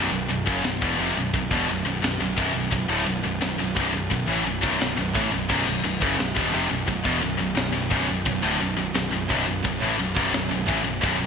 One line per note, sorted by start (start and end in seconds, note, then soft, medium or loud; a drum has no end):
0.00 0.11 B0 loud
0.00 0.11 B1 medium
0.00 0.10 F#2 loud
0.11 0.28 B0 medium
0.11 0.27 B1 medium
0.11 0.28 F#2 medium
0.29 0.46 B0 medium
0.29 0.45 B1 medium
0.29 0.45 F#2 medium
0.29 ride medium
0.46 0.63 F#1 medium
0.46 0.63 F#2 loud
0.46 0.63 C#3 medium
0.46 kick loud
0.64 0.80 B0 medium
0.64 0.81 B1 medium
0.64 0.82 F#2 medium
0.64 snare loud
0.64 ride loud
0.82 0.98 E1 medium
0.82 0.98 E2 medium
0.82 0.98 B2 loud
0.82 kick loud
0.98 1.14 F1 medium
0.98 1.15 F2 medium
0.98 1.15 C3 loud
0.98 ride medium
1.15 1.32 B0 medium
1.15 1.34 B1 medium
1.15 1.34 F#2 medium
1.33 1.50 B0 medium
1.33 1.51 B1 medium
1.33 1.51 F#2 medium
1.33 kick loud
1.33 ride loud
1.51 1.67 E1 medium
1.51 1.67 E2 loud
1.51 1.68 B2 loud
1.51 kick loud
1.68 1.83 B0 medium
1.68 1.84 B1 medium
1.68 1.84 F#2 medium
1.68 ride medium
1.84 2.01 B0 medium
1.84 2.01 B1 medium
1.84 2.02 F#2 medium
2.02 2.18 B0 medium
2.02 2.19 B1 medium
2.02 2.19 F#2 medium
2.02 snare loud
2.02 ride loud
2.20 2.36 B0 medium
2.20 2.35 B1 medium
2.20 2.36 F#2 medium
2.36 2.54 B0 medium
2.36 2.53 B1 medium
2.36 2.54 F#2 loud
2.36 kick loud
2.36 ride medium
2.55 2.71 B0 medium
2.55 2.70 B1 medium
2.55 2.70 F#2 medium
2.71 2.88 B0 medium
2.71 2.88 B1 medium
2.71 2.88 F#2 medium
2.71 kick medium
2.71 ride loud
2.88 3.05 D1 loud
2.88 3.05 D2 medium
2.88 3.05 A2 medium
3.06 3.23 B0 medium
3.06 3.22 B1 medium
3.06 3.22 F#2 medium
3.06 ride medium
3.23 3.40 B0 medium
3.23 3.40 B1 medium
3.23 3.40 F#2 medium
3.41 3.58 B0 medium
3.41 3.57 B1 medium
3.41 3.58 F#2 medium
3.41 snare loud
3.41 ride loud
3.58 3.76 B0 medium
3.58 3.75 B1 medium
3.58 3.75 F#2 medium
3.76 3.93 B0 medium
3.76 3.92 B1 medium
3.76 3.92 F#2 loud
3.76 kick loud
3.76 ride medium
3.94 4.10 B0 medium
3.94 4.09 B1 medium
3.94 4.09 F#2 medium
4.10 4.27 B0 medium
4.10 4.27 B1 medium
4.10 4.28 F#2 medium
4.10 kick medium
4.10 ride loud
4.27 4.44 A1 medium
4.27 4.44 A2 medium
4.27 4.44 E3 loud
4.45 4.62 B0 medium
4.45 4.60 B1 medium
4.45 4.61 F#2 medium
4.45 ride medium
4.61 4.79 B0 medium
4.61 4.78 B1 medium
4.61 4.78 F#2 medium
4.61 kick loud
4.79 4.96 B0 medium
4.79 4.96 B1 medium
4.79 4.96 F#2 medium
4.79 snare loud
4.79 ride medium
4.97 5.14 B0 medium
4.97 5.14 B1 medium
4.97 5.14 F#2 medium
5.14 5.31 A1 medium
5.14 5.31 A2 medium
5.14 5.31 E3 loud
5.14 kick loud
5.14 ride medium
5.32 5.48 B0 medium
5.32 5.48 B1 medium
5.32 5.48 F#2 medium
5.49 5.65 B0 medium
5.49 5.65 B1 medium
5.49 5.65 F#2 loud
5.49 kick medium
5.49 crash medium
5.67 5.83 B0 medium
5.67 5.82 B1 medium
5.67 5.83 F#2 medium
5.84 6.00 B0 medium
5.84 6.00 B1 medium
5.84 5.99 F#2 medium
5.84 ride medium
6.01 6.17 F#1 medium
6.01 6.16 F#2 loud
6.01 6.17 C#3 loud
6.01 kick loud
6.17 6.35 B0 medium
6.17 6.34 B1 medium
6.17 6.35 F#2 medium
6.17 snare loud
6.17 ride loud
6.35 6.52 E1 medium
6.35 6.51 E2 medium
6.35 6.52 B2 loud
6.35 kick loud
6.51 6.70 F1 medium
6.51 6.68 F2 medium
6.51 6.69 C3 loud
6.51 ride medium
6.69 6.87 B0 medium
6.69 6.86 B1 medium
6.69 6.86 F#2 medium
6.87 7.04 B0 medium
6.87 7.03 B1 medium
6.87 7.04 F#2 medium
6.87 kick loud
6.87 ride loud
7.04 7.21 E1 loud
7.04 7.20 E2 medium
7.04 7.21 B2 loud
7.04 kick loud
7.21 7.39 B0 medium
7.21 7.36 B1 medium
7.21 7.37 F#2 medium
7.21 ride medium
7.37 7.56 B0 medium
7.37 7.54 B1 medium
7.37 7.54 F#2 medium
7.55 7.73 B0 medium
7.55 7.71 B1 medium
7.55 7.72 F#2 medium
7.55 snare loud
7.55 ride loud
7.73 7.90 B0 medium
7.73 7.89 B1 medium
7.73 7.90 F#2 medium
7.90 8.08 B0 loud
7.90 8.06 B1 medium
7.90 8.07 F#2 loud
7.90 kick loud
7.90 ride medium
8.07 8.25 B0 medium
8.07 8.25 B1 medium
8.07 8.26 F#2 medium
8.25 8.42 B0 medium
8.25 8.42 B1 medium
8.25 8.42 F#2 medium
8.25 kick medium
8.25 ride loud
8.43 8.59 D1 medium
8.43 8.59 D2 medium
8.43 8.59 A2 loud
8.60 8.77 B0 medium
8.60 8.75 B1 medium
8.60 8.76 F#2 medium
8.60 ride medium
8.77 8.94 B0 medium
8.77 8.93 B1 medium
8.77 8.94 F#2 medium
8.95 9.11 B0 medium
8.95 9.11 B1 medium
8.95 9.12 F#2 medium
8.95 snare loud
8.95 ride loud
9.12 9.29 B0 medium
9.12 9.28 B1 medium
9.12 9.29 F#2 medium
9.30 9.46 B0 loud
9.30 9.45 B1 medium
9.30 9.45 F#2 medium
9.30 kick loud
9.30 ride medium
9.46 9.64 B0 medium
9.46 9.63 B1 medium
9.46 9.63 F#2 medium
9.64 9.81 B0 medium
9.64 9.82 B1 medium
9.64 9.82 F#2 medium
9.64 kick medium
9.64 ride loud
9.82 9.98 A1 loud
9.82 9.98 A2 medium
9.82 9.99 E3 loud
9.99 10.16 B0 medium
9.99 10.15 B1 medium
9.99 10.16 F#2 medium
9.99 ride medium
10.17 10.33 B0 medium
10.17 10.32 B1 medium
10.17 10.33 F#2 loud
10.17 kick loud
10.33 10.51 B0 medium
10.33 10.50 B1 medium
10.33 10.50 F#2 medium
10.33 snare loud
10.33 ride loud
10.51 10.68 B0 medium
10.51 10.67 B1 medium
10.51 10.67 F#2 medium
10.68 10.85 A1 loud
10.68 10.84 A2 loud
10.68 10.84 E3 loud
10.68 kick loud
10.68 ride medium
10.84 11.00 B1 medium
10.84 11.01 F#2 medium
10.88 11.03 B0 medium
11.01 11.20 B0 medium
11.01 11.17 B1 loud
11.01 11.17 F#2 loud
11.01 kick loud
11.01 ride medium
11.18 11.27 B1 medium
11.18 11.27 F#2 medium
11.23 11.27 B0 medium